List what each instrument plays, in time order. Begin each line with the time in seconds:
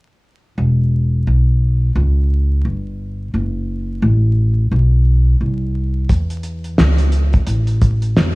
0.58 upright bass E1
1.27 upright bass B1
1.96 upright bass C#2
2.65 upright bass G1
3.34 upright bass F#1
4.02 upright bass A1
4.71 upright bass B1
5.41 upright bass C2
6.09 upright bass E2, kick, closed hi-hat
6.30 closed hi-hat
6.43 closed hi-hat
6.64 closed hi-hat
6.78 upright bass C#2, snare
6.98 closed hi-hat
7.12 closed hi-hat
7.33 kick, closed hi-hat
7.47 upright bass A1, closed hi-hat
7.67 closed hi-hat
7.81 kick, closed hi-hat
8.02 closed hi-hat
8.16 upright bass F2, snare